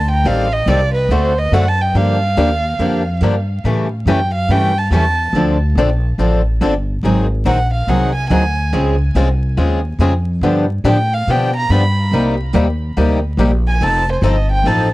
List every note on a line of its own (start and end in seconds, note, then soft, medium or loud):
0.00 0.23 D2 loud
0.00 0.10 A5 medium
0.11 0.28 G5 medium
0.25 0.66 A1 medium
0.25 0.47 D#3 medium
0.25 0.47 G3 medium
0.25 0.47 C4 medium
0.25 0.47 G4 medium
0.25 0.47 A4 medium
0.25 0.54 F5 medium
0.53 0.70 D#5 medium
0.66 1.08 C2 medium
0.66 0.79 D#3 loud
0.66 0.79 G3 medium
0.66 0.79 C4 loud
0.66 0.79 G4 medium
0.66 0.79 A4 loud
0.66 0.94 D5 medium
0.94 1.13 B4 medium
1.09 1.51 D2 medium
1.09 1.32 D3 medium
1.09 1.32 A3 medium
1.09 1.32 C4 medium
1.09 1.32 F#4 medium
1.09 1.32 A4 medium
1.09 1.40 C5 medium
1.39 1.55 D#5 loud
1.52 1.93 F#2 medium
1.52 1.64 D3 medium
1.52 1.64 A3 medium
1.52 1.64 C4 medium
1.52 1.65 F#4 medium
1.52 1.65 A4 medium
1.52 1.70 F#5 loud
1.68 1.83 A5 loud
1.82 1.98 G5 medium
1.94 2.36 G2 medium
1.94 2.16 D3 medium
1.94 2.16 F3 medium
1.94 2.16 A#3 medium
1.94 2.17 D4 medium
1.94 2.17 G4 medium
1.94 3.23 F5 loud
2.37 2.78 D#2 medium
2.37 2.49 D3 medium
2.37 2.49 F3 medium
2.37 2.49 A#3 medium
2.37 2.49 D4 loud
2.37 2.49 G4 medium
2.79 3.21 F2 medium
2.79 3.01 D3 medium
2.79 3.01 F3 medium
2.79 3.02 A#3 medium
2.79 3.02 D4 medium
2.79 3.02 G4 medium
3.21 3.63 G2 medium
3.21 3.34 D3 medium
3.21 3.34 F3 medium
3.21 3.34 A#3 medium
3.21 3.34 D4 medium
3.21 3.34 G4 medium
3.64 4.05 A2 medium
3.64 3.86 C#3 medium
3.64 3.86 E3 medium
3.64 3.87 G3 medium
3.64 3.86 A3 medium
3.64 3.87 C#4 medium
3.64 3.87 E4 medium
3.64 3.87 G4 medium
3.64 3.87 A4 medium
4.06 4.48 F#2 medium
4.06 4.19 C#3 medium
4.06 4.19 E3 medium
4.06 4.19 G3 medium
4.06 4.19 A3 medium
4.06 4.19 C#4 medium
4.06 4.19 E4 loud
4.06 4.19 G4 loud
4.06 4.19 A4 medium
4.06 4.33 G5 medium
4.34 4.53 F5 medium
4.48 4.90 G2 medium
4.48 4.71 C#3 medium
4.48 4.71 E3 medium
4.48 4.70 G3 medium
4.48 4.71 A3 medium
4.48 4.71 C#4 medium
4.48 4.71 E4 medium
4.48 4.72 G4 medium
4.48 4.71 A4 medium
4.48 4.79 G5 medium
4.78 4.93 A5 medium
4.91 5.32 E2 medium
4.91 5.03 C#3 medium
4.91 5.03 E3 medium
4.91 5.04 G3 medium
4.91 5.03 A3 medium
4.91 5.04 C#4 medium
4.91 5.04 E4 loud
4.91 5.04 G4 medium
4.91 5.05 A4 loud
4.91 5.32 A5 loud
5.33 5.75 D2 medium
5.33 5.56 D3 medium
5.33 5.57 F3 medium
5.33 5.56 C4 medium
5.33 5.56 D4 medium
5.33 5.57 A4 medium
5.75 6.17 A#1 medium
5.75 5.88 D3 medium
5.75 5.89 F3 medium
5.75 5.89 C4 loud
5.75 5.89 D4 loud
5.75 5.89 A4 medium
6.18 6.60 A1 medium
6.18 6.40 D3 medium
6.18 6.40 F3 medium
6.18 6.41 C4 medium
6.18 6.40 D4 medium
6.18 6.41 A4 medium
6.61 7.02 G1 medium
6.61 6.73 D3 medium
6.61 6.73 F3 medium
6.61 6.73 C4 medium
6.61 6.73 D4 medium
6.61 6.73 A4 medium
7.03 7.44 G#1 medium
7.03 7.25 D#3 medium
7.03 7.26 F#3 medium
7.03 7.26 C4 medium
7.03 7.26 D#4 medium
7.03 7.26 G#4 medium
7.45 7.87 A#1 medium
7.45 7.57 D#3 medium
7.45 7.57 F#3 medium
7.45 7.57 C4 medium
7.45 7.58 D#4 medium
7.45 7.58 G#4 loud
7.45 7.72 F#5 loud
7.74 7.91 F5 medium
7.87 8.29 C2 medium
7.87 8.10 D#3 medium
7.87 8.10 F#3 medium
7.87 8.10 C4 medium
7.87 8.10 D#4 medium
7.87 8.11 G#4 medium
7.87 8.14 F#5 medium
8.15 8.29 G#5 medium
8.30 8.72 D2 medium
8.30 8.42 D#3 medium
8.30 8.42 F#3 medium
8.30 8.42 C4 medium
8.30 8.43 D#4 medium
8.30 8.43 G#4 medium
8.30 8.70 G#5 medium
8.73 9.14 C#2 medium
8.73 8.94 C#3 medium
8.73 8.94 G#3 medium
8.73 8.95 C4 medium
8.73 8.95 F4 medium
8.73 8.95 G#4 medium
9.15 9.56 C2 medium
9.15 9.27 C#3 medium
9.15 9.27 G#3 medium
9.15 9.27 C4 loud
9.15 9.27 F4 loud
9.15 9.27 G#4 medium
9.57 9.98 D#2 medium
9.57 9.79 C#3 medium
9.57 9.79 G#3 medium
9.57 9.79 C4 medium
9.57 9.79 F4 medium
9.57 9.80 G#4 medium
9.99 10.41 F2 medium
9.99 10.12 C#3 medium
9.99 10.12 G#3 medium
9.99 10.12 C4 medium
9.99 10.12 F4 medium
9.99 10.12 G#4 medium
10.41 10.83 G2 medium
10.41 10.64 D3 medium
10.41 10.64 F3 medium
10.41 10.65 B3 medium
10.41 10.65 D4 medium
10.41 10.65 G4 medium
10.84 11.26 A2 medium
10.84 10.96 D3 medium
10.84 10.96 F3 medium
10.84 10.96 B3 medium
10.84 10.96 D4 medium
10.84 10.97 G4 loud
10.84 11.15 G5 medium
11.14 11.32 F5 loud
11.27 11.69 B2 medium
11.27 11.50 D3 medium
11.27 11.50 F3 medium
11.27 11.50 B3 medium
11.27 11.50 D4 medium
11.27 11.50 G4 medium
11.27 11.55 G5 medium
11.56 11.72 A#5 loud
11.70 12.11 G2 medium
11.70 11.82 D3 medium
11.70 11.82 F3 medium
11.70 11.82 B3 medium
11.70 11.82 D4 medium
11.70 11.82 G4 medium
11.70 12.13 B5 medium
12.11 12.53 C2 medium
12.11 12.34 C3 medium
12.11 12.34 G3 medium
12.11 12.34 A#3 medium
12.11 12.35 D#4 medium
12.11 12.34 G4 medium
12.54 12.95 D#2 medium
12.54 12.66 C3 loud
12.54 12.66 G3 medium
12.54 12.66 A#3 medium
12.54 12.66 D#4 medium
12.54 12.67 G4 loud
12.97 13.37 D2 medium
12.97 13.18 C3 medium
12.97 13.18 G3 medium
12.97 13.19 A#3 medium
12.97 13.19 D#4 medium
12.97 13.19 G4 medium
13.37 13.79 A#1 medium
13.37 13.50 C3 medium
13.37 13.51 G3 medium
13.37 13.51 A#3 medium
13.37 13.51 D#4 medium
13.37 13.50 G4 medium
13.68 13.85 G#5 loud
13.81 14.21 F1 medium
13.81 14.03 F3 medium
13.81 14.03 C4 medium
13.81 14.03 D#4 medium
13.81 14.03 A4 medium
13.81 14.09 A5 loud
14.12 14.28 C5 medium
14.22 14.63 G1 loud
14.22 14.35 F3 medium
14.22 14.35 C4 loud
14.22 14.35 D#4 loud
14.22 14.35 A4 loud
14.27 14.51 D#5 medium
14.51 14.68 G5 loud
14.64 14.94 A1 medium
14.64 14.87 F3 medium
14.64 14.87 C4 medium
14.64 14.88 D#4 medium
14.64 14.88 A4 medium
14.64 14.93 A5 medium